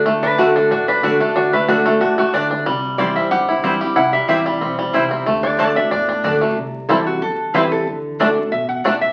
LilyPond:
<<
  \new Staff \with { instrumentName = "Resonator guitar played with a steel bar" } { \time 4/4 \key d \mixolydian \tempo 4 = 184 r8 b'8 fis'8 a'8 fis'8 b'8 fis'8 a'8 | fis'8 b'8 fis'8 a'8 fis'8 fis'8 r4 | r4 d''8 e''8 fis''2 | fis''8 e''8 e''2. |
r8 d''8 d''8 e''8 d''2 | r4 a'8 fis'8 a'4 b'8 a'8 | r2 e''8 fis''4 e''8 | }
  \new Staff \with { instrumentName = "Mandolin" } { \time 4/4 \key d \mixolydian r4 <a fis' d'' a''>8 r4. <a fis' d'' a''>8 r8 | r4 <a fis' d'' a''>8 r4. <a fis' d'' a''>8 r8 | r4 <c' e' c'' g''>8 r4. <c' e' c'' g''>8 r8 | r4 <c' e' c'' g''>8 r4. <c' e' c'' g''>8 r8 |
r4 <a fis' d'' a''>8 r4. <a fis' d'' a''>8 r8 | r4 <c' e' c'' g''>8 r4. <c' e' c'' g''>8 r8 | r4 <a fis' d'' a''>8 r4. <a fis' d'' a''>8 r8 | }
  \new Staff \with { instrumentName = "Five-string banjo" } { \time 4/4 \key d \mixolydian <a d'>8 d'8 a8 d'8 d'8 d'8 d'8 a8 | d'8 a8 d'8 a8 d'8 a8 d'8 d'8 | g4 g8 c'8 g'8 e'8 g8 g'8 | e'8 g8 g'8 g8 c'8 g8 e'8 c'8 |
a8 d'8 a8 d'8 d'8 d'8 d'8 a8 | r4 <g c' e'>8 r4. <g c' e'>8 r8 | r4 <a d'>8 r4. <a d'>8 r8 | }
  \new Staff \with { instrumentName = "Steel-string acoustic guitar" } { \time 4/4 \key d \mixolydian << { r4 <d a d' fis'>4 r4 <d a d' fis'>8 <d' fis'>8 | r4 <d a d' fis'>4 r2 | r4 <e g c' e'>4 r4 <e g c' e'>8 <c' e'>8 | r4 <e g c' e'>4 r2 |
r4 <d a d' fis'>8 <d' fis'>8 r4 <d a d' fis'>8 <d' fis'>8 | r4 <e g c' e'>4 r4 <e g c' e'>4 | r4 <d a d' fis'>8 <d' fis'>8 r2 | } \\ { d2 a,2 | d2 a,4 d4 | c2 g,2 | c2 b4 c4 |
d2 a,2 | c2 g,2 | d2 b,4 r4 | } >> }
  \new Staff \with { instrumentName = "Upright bass" } { \clef bass \time 4/4 \key d \mixolydian d,2 a,,2 | d,2 a,,2 | c,2 g,,2 | c,4 a,,4 b,,4 c,4 |
d,2 e,4 d,4 | c,2 g,,2 | d,2 a,,2 | }
>>